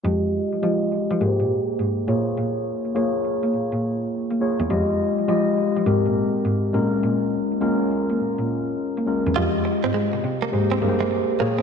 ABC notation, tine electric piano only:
X:1
M:4/4
L:1/8
Q:"Swing 16ths" 1/4=103
K:Fm
V:1 name="Tine electric piano"
[A,FGe]2 [A,FGe]2 [B,GABc]2 z [B,FAd]- | [B,FAd] z [B,FAd]3 z2 [B,FAd] | [A,FGe]2 [A,FGe]2 [A,CGB]2 z [A,DFB]- | [A,DFB] z [A,DFB]3 z2 [A,DFB] |
[A,FGe]3 z [B,GAc] [B,GABc]2 [B,FAd] |]